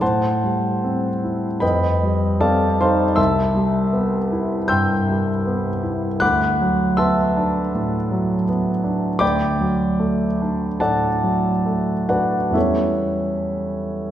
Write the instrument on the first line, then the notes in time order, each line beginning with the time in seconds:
grand piano
0.01 A2 C5 F#5 A5 C6
0.44 G3
0.84 C4
1.24 E4
1.60 F2 B4 D#5 G5 B5
2.03 G3
2.41 C4 A4 D5 F5 A5
2.81 D#4 C5 F5 A5 C6
3.16 C2 E5 A5 C6 E6
3.55 G3
3.92 B3
4.32 E4
4.68 G2 G5 C6 E6 G6
5.09 G3
5.46 B3
5.83 E4
6.20 D2 F#5 B5 D6 F#6
6.61 F#3
6.97 B3 E5 A5 C6 E6
7.37 D4
7.75 A2
8.11 F#3
8.49 B3
8.84 D4
9.19 D2 D5 G5 B5 D6
9.61 F#3
9.99 A3
10.42 D4
10.80 A2 A4 D5 F#5 A5
11.24 F#3
11.66 A3
12.09 D4 F#4 B4 D5 F#5
12.51 E2 E3 G3 C#4 E5
12.55 E4 A4 C#5